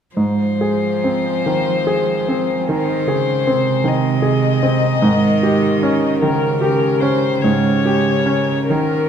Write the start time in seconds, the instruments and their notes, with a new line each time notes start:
0.15 grand piano G#2, cello F3, violin C5
0.61 grand piano G#4
1.04 grand piano C4
1.46 grand piano D#3
1.87 grand piano G#4
2.28 grand piano C4
2.68 cello D#3, grand piano D#3, violin C5
3.07 cello C#3, grand piano G#4
3.47 cello C3, grand piano C4
3.84 grand piano D#3
3.88 violin D#5
4.22 grand piano G#4
4.63 grand piano C4
5.02 grand piano G#2, cello D#3
5.43 grand piano G4
5.83 grand piano C#4
6.20 cello C#3, grand piano D#3, violin A#4
6.61 grand piano G4, violin A#4
7.00 grand piano C#4, violin C5
7.42 grand piano G#2, cello C#3, violin C#5
7.85 grand piano G4
8.26 grand piano C#4
8.70 cello D#3, grand piano D#3, violin A#4